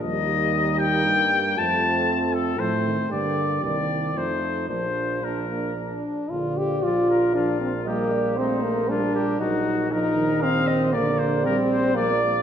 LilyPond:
<<
  \new Staff \with { instrumentName = "Trumpet" } { \time 3/4 \key bes \major \tempo 4 = 117 ees''4. g''4. | a''4. a'8 c''4 | d''4 d''4 c''4 | c''4 bes'4. r8 |
r4 d''8 bes'8 f'4 | g'4 ees'4 f'8 g'8 | ges'4 bes'4 f''8 ees''8 | d''8 c''8 bes'8 c''8 d''4 | }
  \new Staff \with { instrumentName = "Flugelhorn" } { \time 3/4 \key bes \major ees'2. | c'2 c'4 | g'4 g'4 ees'4 | d'4 d'4. r8 |
d''2 bes'4 | ees''8 d''8 c''4 bes'8 bes'8 | bes'4 bes'4 ees''8 c''8 | d''2 d''4 | }
  \new Staff \with { instrumentName = "French horn" } { \time 3/4 \key bes \major bes2. | a2 a4 | bes4 bes4 a4 | bes4 d'8 bes8 d'4 |
f'8 g'8 f'4 d'8 c'8 | bes4 c'8 bes8 d'4 | ees'4 ees'4 c'4 | bes4 c'4 bes8 r8 | }
  \new Staff \with { instrumentName = "Trombone" } { \clef bass \time 3/4 \key bes \major g2. | f2 f8 ees8 | d4 ees4 f4 | f4 f4. r8 |
d4 f4 f4 | g4 a4 g4 | ges4 f8 ees4. | d4 g4 f4 | }
  \new Staff \with { instrumentName = "Tuba" } { \clef bass \time 3/4 \key bes \major ees,2 g,4 | f,2 a,4 | g,4 c,4 f,4 | bes,,2~ bes,,8 r8 |
bes,,2.~ | bes,,2. | bes,,2.~ | bes,,2. | }
>>